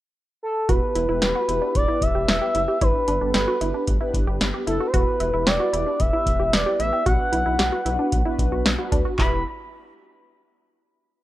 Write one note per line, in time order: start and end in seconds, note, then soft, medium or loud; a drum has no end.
0.43 0.71 A4 medium
0.69 0.80 E1 loud
0.69 1.04 B3 medium
0.69 1.04 E4 medium
0.69 0.90 F#4 medium
0.69 1.04 G4 medium
0.69 1.04 B4 medium
0.69 1.75 B4 loud
0.69 kick loud
0.69 closed hi-hat medium
0.95 1.07 E1 loud
0.95 1.06 E4 medium
0.95 closed hi-hat medium
1.09 1.20 E1 loud
1.09 1.44 B3 medium
1.09 1.44 E4 medium
1.09 1.19 E4 medium
1.09 1.44 G4 medium
1.09 1.44 B4 medium
1.22 1.34 E1 loud
1.22 1.32 G4 medium
1.22 snare loud
1.22 closed hi-hat medium
1.35 1.46 F#4 medium
1.48 1.60 E1 loud
1.48 1.84 B3 medium
1.48 1.59 E4 medium
1.48 1.84 E4 medium
1.48 1.84 G4 medium
1.48 1.84 B4 loud
1.48 closed hi-hat medium
1.62 1.82 D4 medium
1.75 1.87 E1 medium
1.75 2.04 D5 loud
1.75 kick loud
1.75 closed hi-hat medium
1.88 2.36 B3 medium
1.88 2.09 E4 medium
1.88 2.36 E4 medium
1.88 2.36 G4 medium
1.88 2.36 B4 medium
2.01 2.13 E1 loud
2.01 2.83 E5 loud
2.01 kick medium
2.01 closed hi-hat medium
2.15 2.26 E1 loud
2.15 2.36 G4 medium
2.28 2.40 E1 medium
2.28 snare loud
2.28 closed hi-hat medium
2.41 2.77 B3 medium
2.41 2.77 E4 medium
2.41 2.52 G4 medium
2.41 2.77 G4 medium
2.41 2.77 B4 medium
2.55 2.66 F#1 medium
2.55 2.65 E4 medium
2.55 closed hi-hat medium
2.68 2.79 G4 medium
2.81 2.93 G1 loud
2.81 3.17 B3 medium
2.81 3.17 D4 medium
2.81 3.02 E4 medium
2.81 3.17 G4 medium
2.81 3.17 B4 medium
2.81 3.34 B4 medium
2.81 kick loud
2.81 closed hi-hat medium
3.08 3.19 G1 loud
3.08 3.18 D4 medium
3.08 closed hi-hat medium
3.21 3.33 G1 medium
3.21 3.57 B3 medium
3.21 3.57 D4 medium
3.21 3.32 D4 medium
3.21 3.57 G4 medium
3.21 3.57 A4 medium
3.34 3.46 G1 medium
3.34 3.45 G4 medium
3.34 3.84 B4 medium
3.34 snare loud
3.34 closed hi-hat medium
3.48 3.58 F#4 medium
3.61 3.73 G1 medium
3.61 3.96 B3 medium
3.61 3.96 D4 medium
3.61 3.71 E4 medium
3.61 3.97 G4 medium
3.61 3.96 B4 medium
3.61 closed hi-hat medium
3.74 3.95 D4 medium
3.87 3.99 G1 loud
3.87 kick medium
3.87 closed hi-hat medium
4.01 4.48 B3 medium
4.01 4.48 D4 medium
4.01 4.21 E4 medium
4.01 4.48 G4 medium
4.01 4.48 B4 loud
4.14 4.25 G1 medium
4.14 kick medium
4.14 closed hi-hat medium
4.27 4.39 G1 loud
4.27 4.48 G4 medium
4.41 4.52 G1 loud
4.41 snare loud
4.41 closed hi-hat medium
4.54 4.89 B3 medium
4.54 4.89 D4 medium
4.54 4.89 G4 medium
4.54 4.64 G4 medium
4.54 4.89 B4 medium
4.67 4.79 F#1 medium
4.67 4.78 E4 medium
4.67 4.88 A4 medium
4.67 closed hi-hat medium
4.80 4.91 F#4 medium
4.87 4.95 C5 medium
4.94 5.05 E1 loud
4.94 5.29 B3 medium
4.94 5.29 E4 medium
4.94 5.14 F#4 medium
4.94 5.29 G4 medium
4.94 5.29 B4 medium
4.94 5.48 B4 medium
4.94 kick loud
4.94 closed hi-hat medium
5.20 5.32 E1 loud
5.20 5.31 E4 medium
5.20 closed hi-hat medium
5.34 5.45 E1 loud
5.34 5.69 B3 medium
5.34 5.44 E4 medium
5.34 5.69 E4 medium
5.34 5.69 G4 medium
5.34 5.69 B4 medium
5.47 5.58 E1 loud
5.47 5.57 G4 medium
5.47 6.01 D5 loud
5.47 snare loud
5.47 closed hi-hat medium
5.60 5.70 F#4 medium
5.73 5.85 E1 loud
5.73 6.09 B3 medium
5.73 5.84 E4 medium
5.73 6.09 E4 medium
5.73 6.09 G4 medium
5.73 6.09 B4 medium
5.73 closed hi-hat medium
5.86 6.07 D4 medium
6.00 6.11 E1 loud
6.00 6.54 E5 loud
6.00 kick loud
6.00 closed hi-hat medium
6.13 6.61 B3 medium
6.13 6.34 E4 medium
6.13 6.60 E4 medium
6.13 6.61 G4 medium
6.13 6.61 B4 medium
6.26 6.38 E1 loud
6.26 kick medium
6.26 closed hi-hat medium
6.40 6.51 E1 loud
6.40 6.60 G4 medium
6.53 6.64 E1 loud
6.53 6.79 D5 loud
6.53 snare loud
6.53 closed hi-hat medium
6.66 7.02 B3 medium
6.66 7.02 E4 medium
6.66 6.77 G4 medium
6.66 7.02 G4 medium
6.66 7.02 B4 medium
6.80 6.91 A1 medium
6.80 6.90 E4 medium
6.80 7.04 E5 loud
6.80 closed hi-hat medium
6.93 7.03 G4 medium
7.06 7.18 B1 loud
7.06 7.42 B3 medium
7.06 7.42 D4 medium
7.06 7.27 F#4 medium
7.06 7.42 F#4 medium
7.06 7.42 B4 medium
7.06 8.61 F#5 loud
7.06 kick loud
7.06 closed hi-hat medium
7.33 7.44 B1 loud
7.33 7.43 E4 medium
7.33 closed hi-hat medium
7.46 7.57 B1 loud
7.46 7.81 B3 medium
7.46 7.81 D4 medium
7.46 7.56 E4 medium
7.46 7.81 F#4 medium
7.46 7.81 B4 medium
7.59 7.71 B1 medium
7.59 7.69 G4 medium
7.59 snare loud
7.59 closed hi-hat medium
7.72 7.83 F#4 medium
7.86 7.97 B1 loud
7.86 8.21 B3 medium
7.86 8.21 D4 medium
7.86 7.96 E4 medium
7.86 8.21 F#4 medium
7.86 8.21 B4 loud
7.86 closed hi-hat medium
7.99 8.20 D4 medium
8.12 8.24 B1 medium
8.12 kick medium
8.12 closed hi-hat medium
8.25 8.73 B3 medium
8.25 8.73 D4 medium
8.25 8.46 E4 medium
8.25 8.73 F#4 medium
8.25 8.73 B4 loud
8.39 8.50 B1 loud
8.39 kick medium
8.39 closed hi-hat medium
8.52 8.64 B1 loud
8.52 8.73 F#4 medium
8.65 8.77 B1 loud
8.65 snare loud
8.65 closed hi-hat medium
8.79 9.14 B3 medium
8.79 9.14 D4 medium
8.79 8.89 F#4 medium
8.79 9.14 F#4 medium
8.79 9.14 B4 medium
8.92 9.03 D2 medium
8.92 9.02 D4 medium
8.92 kick medium
8.92 closed hi-hat medium
9.05 9.16 F#4 medium
9.18 9.43 E1 loud
9.18 9.43 B3 medium
9.18 9.43 E4 medium
9.18 9.43 G4 medium
9.18 9.43 B4 medium
9.18 9.43 B5 medium
9.18 kick loud
9.18 clap medium